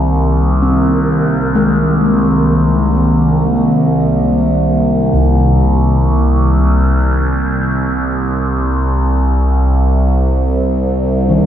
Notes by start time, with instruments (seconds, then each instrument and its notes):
Already playing: analog synth pad C2 D#3 A#3, synth drone C2
0.62 kettle gongs C4
1.55 kettle gongs G#3
5.13 kettle gongs C2
11.30 kettle gongs D#3